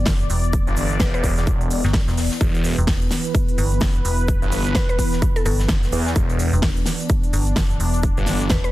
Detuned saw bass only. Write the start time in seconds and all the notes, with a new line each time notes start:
0.67 G1
1.00 E1
1.38 E1
2.41 E1
4.42 G1
5.92 E2
6.16 E1
8.17 G1